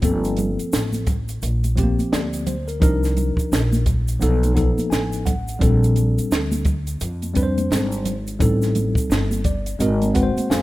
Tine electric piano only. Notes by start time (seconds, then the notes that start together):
0.02 F3 A#3 C4 A4
1.76 F3 A3 C4 G4
1.83 A#3
2.12 D5
2.47 C5
2.68 A#4
2.80 F3 D4 D#4 A#4
4.20 F3 B3 D#4 A4
4.54 F3 B3 D#4 A4
4.90 G#5
5.26 F#5
5.59 G3 C4 D4 A4
7.34 G3 C4 D4 B4
7.43 C5
8.39 G3 C4 D#4 A4
9.45 D5
9.79 G#3 C4 F#4 A#4 D#5
10.13 G#3 C4 F#4 B4 F#5
10.23 C5
10.50 F5 G#5